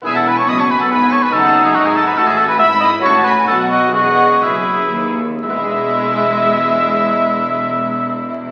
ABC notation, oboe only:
X:1
M:3/4
L:1/16
Q:1/4=128
K:E
V:1 name="Oboe"
G A B c d c B A B2 c B | A3 G F G A B A G A B | e2 d2 c2 B2 A2 F2 | F4 E6 z2 |
e12- | e12 |]